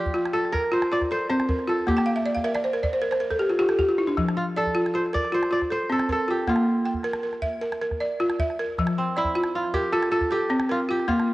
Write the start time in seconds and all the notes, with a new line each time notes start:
Already playing: F4 G4 D5
0.06 calabash thump
0.14 F4, calabash click
0.25 calabash click
0.33 F4 A4
0.45 calabash click
0.52 A#4, calabash thump
0.64 calabash click
0.72 F4 C5, calabash click
0.82 calabash click
0.92 F4 D5, calabash click
1.01 calabash thump, calabash click
1.11 A4 C5, calabash click
1.30 C4 C5, calabash click
1.40 calabash click
1.49 A#4, calabash thump
1.59 calabash click
1.68 F4 A4
1.79 calabash click
1.87 A#3 G4, calabash thump
1.97 G5, calabash click
2.06 F5
2.16 E5, calabash click
2.25 D5
2.35 F5, calabash thump, calabash click
2.44 A#4 E5, calabash click
2.55 D5, calabash click
2.64 C5, calabash click
2.73 A#4, calabash click
2.83 D5, calabash thump
2.93 C5
3.02 A#4
3.11 C5, calabash click
3.20 A#4
3.31 A4, calabash thump
3.39 G4, calabash click
3.50 F4, calabash click
3.59 F4 G4
3.69 A4, calabash click
3.79 G4, calabash thump
3.89 F4
3.98 E4
4.07 D4, calabash click
4.17 F3, calabash thump, calabash click
4.29 calabash click
4.37 F4
4.57 A4 D5, calabash click
4.67 calabash thump
4.75 F4, calabash click
4.86 calabash click
4.94 F4 C5
5.06 calabash click
5.13 A#4 D5, calabash thump
5.24 calabash click
5.32 F4 C5, calabash click
5.43 calabash click
5.51 F4 D5, calabash click
5.62 calabash thump, calabash click
5.70 A4 C5
5.90 C4 A4, calabash click
5.99 calabash click
6.09 A4 A#4, calabash thump
6.19 calabash click
6.28 F4 G4
6.38 calabash click
6.47 A#3 F4, calabash thump, calabash click
6.56 calabash click
6.84 G5, calabash click
6.94 calabash thump
7.03 A#4, calabash click
7.13 calabash click
7.23 A#4
7.33 calabash click
7.42 E5, calabash thump
7.62 A#4, calabash click
7.72 calabash click
7.82 A#4, calabash click
7.91 calabash thump, calabash click
8.00 D5, calabash click
8.20 F4, calabash click
8.30 calabash click
8.39 E5, calabash thump
8.50 calabash click
8.59 A#4
8.78 F3, calabash thump, calabash click
8.87 calabash click
8.98 C4
9.16 E4 D5, calabash click
9.24 calabash thump
9.35 F4, calabash click
9.43 calabash click
9.55 F4
9.64 calabash click
9.74 G4 A#4, calabash thump
9.83 calabash click
9.92 F4 A4, calabash click
10.02 calabash click
10.11 F4 A4, calabash click
10.21 calabash thump, calabash click
10.31 G4 A4, calabash click
10.49 C4, calabash click
10.60 calabash click
10.69 F4 A#4
10.80 calabash click
10.89 F4 G4
11.00 calabash click
11.08 A#3 F4, calabash thump
11.20 calabash click